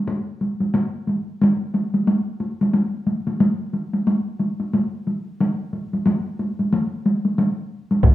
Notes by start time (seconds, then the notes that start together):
0.08 taiko high
0.41 taiko high
0.60 taiko high
0.75 taiko high
1.07 taiko high
1.42 taiko high
1.74 taiko high
1.94 taiko high
2.07 taiko high
2.40 taiko high
2.61 taiko high
2.74 taiko high
3.07 taiko high
3.27 taiko high
3.40 taiko high
3.73 taiko high
3.94 taiko high
4.07 taiko high
4.40 taiko high
4.60 taiko high
4.73 taiko high
5.07 taiko high
5.40 taiko high
5.73 taiko high
5.93 taiko high
6.06 taiko high
6.39 taiko high
6.59 taiko high
6.73 taiko high
7.06 taiko high
7.25 taiko high
7.38 taiko high
7.91 taiko high
8.03 taiko, taiko low-mid, taiko high